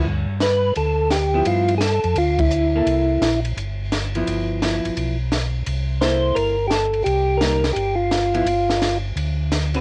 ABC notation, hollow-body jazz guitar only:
X:1
M:4/4
L:1/8
Q:"Swing" 1/4=171
K:Gmix
V:1 name="Hollow-body jazz guitar"
z6 z [F,B,E]- | [F,B,E]2 z4 z [_B,EA]- | [_B,EA]2 z4 z [F,=B,E]- | [F,B,E]2 [F,B,E]3 z3 |
z2 [_B,EA]3 z3 | z2 [G,_B,_E] z4 [F,=B,=E] | z6 z [D,C^FB] |]